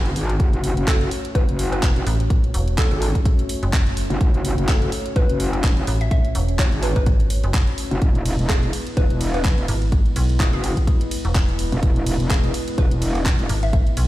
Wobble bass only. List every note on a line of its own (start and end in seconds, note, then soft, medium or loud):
0.00 0.14 F#1 medium
0.16 0.38 G#1 loud
0.40 0.75 F#1 loud
0.77 1.10 F#1 loud
1.35 1.46 F#1 loud
1.48 1.94 F#1 loud
1.96 2.05 F#1 loud
2.78 2.89 F#1 loud
2.91 3.13 G#1 loud
4.10 4.19 F#1 loud
4.21 4.56 F#1 loud
4.58 4.90 F#1 loud
5.16 5.27 F#1 loud
5.29 5.75 F#1 loud
5.77 5.86 F#1 loud
6.59 6.70 F#1 loud
6.72 6.94 G#1 loud
7.91 8.00 F#1 loud
8.02 8.37 E1 loud
8.39 8.71 E1 loud
8.97 9.08 E1 loud
9.10 9.56 E1 medium
9.58 9.67 E1 loud
10.40 10.51 E1 loud
10.53 10.75 F#1 loud
11.72 11.81 E1 loud
11.83 12.18 E1 loud
12.20 12.52 E1 loud
12.78 12.89 E1 loud
12.91 13.37 E1 loud
13.39 13.48 E1 loud